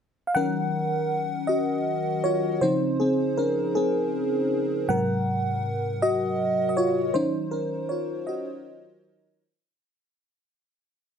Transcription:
0.27 0.34 F5 medium
0.35 0.85 D#3 medium
0.35 0.85 F#3 medium
0.35 0.86 C#4 medium
0.35 1.07 A#4 medium
0.35 1.06 F#5 loud
1.47 2.20 F#4 medium
1.47 2.25 D#5 medium
2.24 2.59 F4 medium
2.24 2.58 C#5 medium
2.61 3.11 C#3 medium
2.61 3.12 F3 soft
2.61 3.00 C4 medium
2.61 2.97 D#4 medium
2.61 2.96 C5 medium
3.00 3.35 C4 medium
3.00 3.38 G#4 medium
3.37 3.72 C#4 medium
3.37 3.72 A#4 medium
3.75 4.56 C4 medium
3.75 4.55 G#4 medium
4.89 7.10 G#2 medium
4.89 7.11 C3 medium
4.89 7.11 F#3 medium
4.89 5.60 A#4 medium
4.89 5.59 F#5 loud
6.02 6.66 F#4 medium
6.02 6.68 D#5 loud
6.69 6.76 D#5 medium
6.77 7.12 F4 medium
6.77 7.11 C#5 loud
7.14 7.64 D#3 medium
7.14 7.64 F#3 medium
7.14 7.52 C#4 medium
7.14 7.50 D#4 medium
7.14 7.52 C5 medium
7.51 7.87 C#4 medium
7.51 7.90 A#4 medium
7.89 8.25 F4 medium
7.89 8.28 C#5 medium
8.27 9.08 F#4 medium
8.27 9.07 D#5 medium

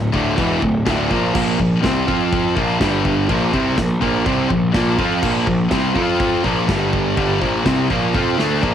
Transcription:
0.00 0.12 D1 medium
0.12 0.36 D1 medium
0.12 0.36 D2 medium
0.12 0.36 A2 medium
0.12 0.37 D3 medium
0.12 kick medium
0.37 0.60 E1 loud
0.37 0.60 E2 loud
0.37 0.61 B2 loud
0.37 0.61 E3 loud
0.37 kick loud
0.37 china medium
0.61 0.85 D1 medium
0.61 0.81 D2 medium
0.61 0.81 A2 medium
0.61 kick medium
0.86 1.09 D1 medium
0.86 1.09 D2 medium
0.86 1.10 A2 loud
0.86 1.10 D3 loud
0.86 kick loud
0.86 snare loud
0.86 china medium
1.10 1.33 A#1 medium
1.10 1.34 A#2 medium
1.10 1.34 F3 medium
1.10 1.34 A#3 loud
1.10 kick loud
1.35 1.57 A#1 medium
1.35 1.58 A#2 medium
1.35 1.58 F3 loud
1.35 1.59 A#3 loud
1.35 kick loud
1.35 china medium
1.35 crash loud
1.59 1.82 A#1 medium
1.59 1.78 A#2 medium
1.59 1.78 F3 medium
1.59 kick medium
1.82 2.06 C2 loud
1.82 2.06 C3 medium
1.82 2.06 G3 medium
1.82 2.06 C4 loud
1.82 kick loud
1.82 snare loud
1.82 china medium
2.07 2.53 F2 loud
2.07 2.54 F3 medium
2.07 2.55 C4 medium
2.07 2.55 F4 medium
2.07 kick medium
2.33 kick loud
2.33 china medium
2.56 2.79 A#1 loud
2.56 2.79 A#2 loud
2.56 2.80 F3 medium
2.56 2.80 A#3 loud
2.56 kick loud
2.80 3.26 G1 medium
2.80 3.28 G2 medium
2.80 3.28 D3 loud
2.80 3.28 G3 medium
2.80 kick loud
2.80 snare loud
2.80 china medium
3.05 kick loud
3.29 3.52 A#1 medium
3.29 3.52 A#2 medium
3.29 3.53 F3 loud
3.29 3.53 A#3 loud
3.29 kick loud
3.29 china medium
3.53 3.76 C2 loud
3.53 3.76 C3 loud
3.53 3.77 G3 medium
3.53 3.77 C4 medium
3.53 kick medium
3.77 4.00 A#1 medium
3.77 3.97 A#2 medium
3.77 3.97 F3 medium
3.77 kick loud
3.77 snare loud
3.77 china medium
4.01 4.24 A#1 loud
4.01 4.25 A#2 medium
4.01 4.25 F3 loud
4.01 4.25 A#3 loud
4.01 kick medium
4.25 4.49 C2 loud
4.25 4.49 C3 loud
4.25 4.50 G3 medium
4.25 4.50 C4 loud
4.25 kick loud
4.25 china medium
4.50 4.73 A#1 medium
4.50 4.69 A#2 medium
4.50 4.70 F3 medium
4.50 kick medium
4.74 4.97 A#1 medium
4.74 4.98 A#2 medium
4.74 4.97 F3 medium
4.74 4.98 A#3 loud
4.74 kick loud
4.74 snare loud
4.74 china medium
4.98 5.21 F2 loud
4.98 5.22 F3 medium
4.98 5.22 C4 loud
4.98 5.22 F4 loud
4.98 kick medium
5.22 5.46 A#1 medium
5.22 5.46 A#2 loud
5.22 5.46 F3 loud
5.22 5.47 A#3 loud
5.22 kick loud
5.22 china medium
5.22 crash medium
5.47 5.70 A#1 medium
5.47 5.67 A#2 medium
5.47 5.67 F3 medium
5.47 kick medium
5.71 5.94 C2 medium
5.71 5.95 C3 loud
5.71 5.95 G3 medium
5.71 5.95 C4 loud
5.71 kick loud
5.71 snare loud
5.71 china medium
5.95 6.41 F2 medium
5.95 6.43 F3 medium
5.95 6.44 C4 medium
5.95 6.44 F4 medium
5.95 kick medium
6.20 kick loud
6.20 china medium
6.44 6.67 A#1 loud
6.44 6.69 A#2 loud
6.44 6.69 F3 medium
6.44 6.69 A#3 medium
6.44 kick medium
6.68 7.14 G1 loud
6.68 7.15 G2 medium
6.68 7.15 D3 medium
6.68 7.16 G3 loud
6.68 kick loud
6.68 snare loud
6.68 china medium
6.93 kick medium
7.16 7.40 G1 medium
7.16 7.40 G2 loud
7.16 7.41 D3 loud
7.16 7.41 G3 loud
7.16 kick loud
7.16 china medium
7.41 7.64 A#1 medium
7.41 7.64 A#2 medium
7.41 7.65 F3 medium
7.41 7.65 A#3 medium
7.41 kick medium
7.65 7.88 C2 loud
7.65 7.89 C3 medium
7.65 7.89 G3 medium
7.65 7.89 C4 loud
7.65 kick loud
7.65 snare loud
7.65 china medium
7.89 8.13 A#1 medium
7.89 8.13 A#2 medium
7.89 8.13 F3 medium
7.89 8.14 A#3 loud
7.89 kick medium
8.14 8.37 F2 medium
8.14 8.38 F3 medium
8.14 8.38 C4 loud
8.14 8.38 F4 loud
8.14 kick loud
8.14 high tom medium
8.38 8.61 D2 loud
8.38 8.62 D3 medium
8.38 8.62 A3 loud
8.38 8.63 D4 loud
8.38 snare medium
8.62 8.74 A#1 medium
8.62 8.74 A#2 medium
8.62 8.74 F3 medium
8.62 8.74 A#3 medium
8.62 kick loud

